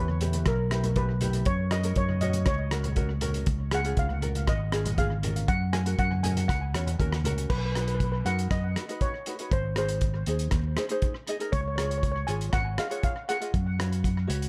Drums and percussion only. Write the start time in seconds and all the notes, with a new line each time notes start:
0.09 high conga
0.21 closed hi-hat, low conga
0.33 closed hi-hat, high conga
0.46 kick, cross-stick, closed hi-hat
0.71 cross-stick, closed hi-hat
0.84 closed hi-hat, low conga
0.96 kick, closed hi-hat, high conga
1.21 closed hi-hat, high conga, low conga
1.33 closed hi-hat
1.45 kick, closed hi-hat
1.71 cross-stick, closed hi-hat
1.84 closed hi-hat
1.96 kick, closed hi-hat
2.09 high conga
2.21 closed hi-hat, low conga
2.33 closed hi-hat, high conga
2.46 kick, cross-stick, closed hi-hat
2.71 cross-stick, closed hi-hat
2.84 closed hi-hat, low conga
2.96 kick, closed hi-hat, high conga
3.21 closed hi-hat, high conga, low conga
3.34 closed hi-hat
3.46 kick, closed hi-hat
3.71 cross-stick, closed hi-hat
3.85 closed hi-hat
3.97 kick, closed hi-hat
4.10 high conga
4.22 closed hi-hat, low conga
4.35 closed hi-hat, high conga
4.47 kick, cross-stick, closed hi-hat
4.72 cross-stick, closed hi-hat
4.86 closed hi-hat, low conga
4.98 kick, closed hi-hat, high conga
5.23 closed hi-hat, high conga, low conga
5.36 closed hi-hat
5.48 kick, closed hi-hat
5.73 cross-stick, closed hi-hat
5.86 closed hi-hat
5.99 kick, closed hi-hat
6.12 high conga
6.24 closed hi-hat, high conga, low conga
6.37 closed hi-hat, high conga
6.49 kick, cross-stick, closed hi-hat
6.75 cross-stick, closed hi-hat
6.87 closed hi-hat, low conga
6.99 kick, closed hi-hat, high conga
7.13 cross-stick
7.24 closed hi-hat, high conga, low conga
7.38 closed hi-hat
7.50 kick, crash
7.75 cross-stick, closed hi-hat
7.88 closed hi-hat
8.00 kick, closed hi-hat
8.26 closed hi-hat
8.39 closed hi-hat
8.51 kick, cross-stick, closed hi-hat
8.76 cross-stick, closed hi-hat
8.89 closed hi-hat
9.01 kick, closed hi-hat
9.26 closed hi-hat
9.39 closed hi-hat
9.52 kick, closed hi-hat
9.76 cross-stick, closed hi-hat
9.89 closed hi-hat
10.01 kick, closed hi-hat
10.26 closed hi-hat
10.39 closed hi-hat
10.51 kick, cross-stick, closed hi-hat
10.77 cross-stick, closed hi-hat
10.89 closed hi-hat
11.02 kick, closed hi-hat
11.27 closed hi-hat
11.40 closed hi-hat
11.53 kick, closed hi-hat
11.78 cross-stick, closed hi-hat
11.91 closed hi-hat
12.03 kick, closed hi-hat
12.28 closed hi-hat
12.41 closed hi-hat
12.53 kick, cross-stick, closed hi-hat
12.78 cross-stick, closed hi-hat
12.91 closed hi-hat
13.03 kick, closed hi-hat
13.29 closed hi-hat
13.42 closed hi-hat
13.54 kick, closed hi-hat
13.80 cross-stick, closed hi-hat
13.93 closed hi-hat
14.04 kick, closed hi-hat
14.30 closed hi-hat
14.42 closed hi-hat